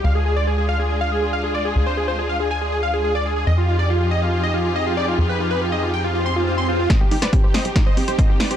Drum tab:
HH |----------------|----------------|----------------|----------------|
SD |----------------|----------------|----------------|----------------|
BD |----------------|----------------|----------------|----------------|

HH |x-oxx-oxx-oxx-ox|
SD |o--o--o-o-----o-|
BD |o---o---o---o---|